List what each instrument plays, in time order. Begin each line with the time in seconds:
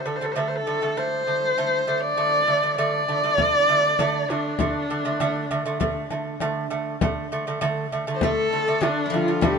0.06 lute D3 A3, horsehead fiddle A4
0.16 horsehead fiddle C5
0.21 lute D3 A3, horsehead fiddle A4
0.32 lute D3, horsehead fiddle C5
0.36 lute A3, horsehead fiddle A4
0.48 horsehead fiddle C5
0.56 horsehead fiddle A4
0.67 lute D3 A3
0.82 lute D3 A3
0.97 lute D3 A3, horsehead fiddle C5
1.27 lute D3 A3
1.58 lute D3 A3
1.87 lute D3 A3
2.00 horsehead fiddle D5
2.17 lute D3 A3
2.47 lute D3 A3
2.63 lute D3 A3
2.77 lute D3 A3, horsehead fiddle D5
3.08 lute D3 A3
3.23 lute D3 A3
3.38 lute D3 A3, frame drum
3.69 lute D3 A3
3.99 lute D3 A3, frame drum
4.29 lute D3 A3, horsehead fiddle D4, frame drum
4.59 lute D3 A3, frame drum
4.90 lute D3 A3, frame drum
5.05 lute D3 A3
5.20 lute D3 A3, frame drum
5.51 lute D3 A3, frame drum
5.66 lute D3 A3
5.80 lute D3 A3, frame drum
6.10 lute D3 A3, frame drum
6.40 lute D3 A3, frame drum
6.70 lute D3 A3, frame drum
7.01 lute D3 A3, frame drum
7.31 lute D3 A3, frame drum
7.47 lute D3 A3
7.61 lute D3 A3, frame drum
7.92 lute D3 A3, frame drum
8.07 lute D3 A3
8.14 horsehead fiddle C5
8.21 lute D3 A3, guzheng A3, horsehead fiddle A4, frame drum
8.53 lute D3 A3
8.68 lute D3 A3
8.80 guzheng D3, lute D3 A3, frame drum
8.85 horsehead fiddle D4
9.06 guzheng G3
9.10 lute D3, guzheng F3, frame drum
9.14 lute A3, horsehead fiddle F4
9.28 lute D3 A3
9.41 lute D3 A3, guzheng G3, frame drum
9.46 horsehead fiddle G4